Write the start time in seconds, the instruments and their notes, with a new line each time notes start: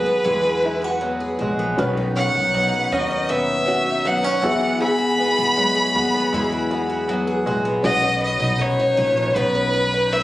Already playing: upright bass D#2, five-string banjo E3 G#3 B3, twelve-string acoustic guitar F#3 F#4 G#4, violin B4
0.06 twelve-string acoustic guitar B3
0.24 upright bass E2, twelve-string acoustic guitar E3 G#4, five-string banjo G#3
0.43 twelve-string acoustic guitar F#4
0.62 twelve-string acoustic guitar B3, five-string banjo E4
0.82 twelve-string acoustic guitar F#4, five-string banjo F#4
1.01 twelve-string acoustic guitar F#3, five-string banjo B3
1.20 twelve-string acoustic guitar G#4
1.39 upright bass A#1, five-string banjo G#3, twelve-string acoustic guitar F#4
1.59 twelve-string acoustic guitar B3
1.77 upright bass B1, twelve-string acoustic guitar B2 B4, five-string banjo D#3, felt piano C#4 F#4 B4 C#5
1.97 twelve-string acoustic guitar D#4
2.16 twelve-string acoustic guitar C#4, five-string banjo C#4, violin F#5
2.35 upright bass B1, twelve-string acoustic guitar D#4
2.54 twelve-string acoustic guitar F#3, five-string banjo B3
2.74 twelve-string acoustic guitar B4
2.92 upright bass D#2, five-string banjo C#4, twelve-string acoustic guitar D#4, violin D#5
3.11 twelve-string acoustic guitar C#4
3.29 twelve-string acoustic guitar B2 B4, five-string banjo B3, violin E5
3.66 twelve-string acoustic guitar C#4, five-string banjo F#4
3.86 twelve-string acoustic guitar D#4
4.05 twelve-string acoustic guitar F#3, five-string banjo B3, violin F#5
4.23 five-string banjo C#4, twelve-string acoustic guitar B4
4.42 upright bass E2, twelve-string acoustic guitar E3, five-string banjo E3, felt piano B3 F#4 G#4 E5
4.61 twelve-string acoustic guitar B3
4.80 five-string banjo E3, twelve-string acoustic guitar G#4, violin B5
4.98 twelve-string acoustic guitar F#4
5.18 twelve-string acoustic guitar B3, five-string banjo B3
5.37 upright bass E2, twelve-string acoustic guitar F#4
5.57 twelve-string acoustic guitar F#3, five-string banjo G#3
5.75 twelve-string acoustic guitar G#4
5.95 upright bass D#2, five-string banjo B3, twelve-string acoustic guitar F#4
6.14 twelve-string acoustic guitar B3
6.33 upright bass E2, twelve-string acoustic guitar E3 G#4, five-string banjo G#3
6.52 twelve-string acoustic guitar F#4
6.71 twelve-string acoustic guitar B3, five-string banjo F#4
6.90 twelve-string acoustic guitar F#4
7.08 twelve-string acoustic guitar F#3, five-string banjo B3
7.27 twelve-string acoustic guitar G#4
7.46 upright bass A#1, five-string banjo G#3, twelve-string acoustic guitar F#4
7.65 twelve-string acoustic guitar B3
7.83 upright bass B1, felt piano C#4 F#4 B4 C#5 F#5, twelve-string acoustic guitar B4, violin D#5
8.02 twelve-string acoustic guitar C#4
8.21 twelve-string acoustic guitar B4, violin D#5
8.40 upright bass B1, twelve-string acoustic guitar D#4
8.59 twelve-string acoustic guitar B4, violin C#5
8.80 twelve-string acoustic guitar D#4
8.97 upright bass A#1, twelve-string acoustic guitar B4
9.17 twelve-string acoustic guitar C#4
9.35 upright bass B1, twelve-string acoustic guitar B2 B4, violin B4
9.55 twelve-string acoustic guitar C#4
9.73 twelve-string acoustic guitar B4
9.94 twelve-string acoustic guitar D#4
10.12 twelve-string acoustic guitar B4, violin E5